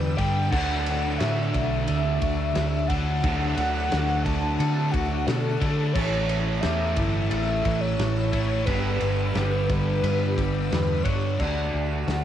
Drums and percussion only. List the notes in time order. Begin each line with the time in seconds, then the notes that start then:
0.18 kick, ride
0.53 kick, crash
0.86 ride
1.20 snare, ride
1.54 kick, ride
1.88 ride
2.22 kick, ride
2.55 snare, ride
2.90 kick, ride
3.24 kick, ride
3.58 ride
3.92 snare, ride
4.26 kick, ride
4.60 ride
4.94 kick, ride
5.28 snare, ride
5.62 kick, ride
5.95 kick, crash
6.29 ride
6.63 snare, ride
6.96 kick, ride
7.31 ride
7.65 kick, ride
7.99 snare, ride
8.33 kick, ride
8.67 kick, ride
9.00 ride
9.35 snare, ride
9.70 kick, ride
10.04 ride
10.38 kick, ride
10.72 snare, ride
11.05 kick, ride
11.40 kick, crash
12.08 snare, open hi-hat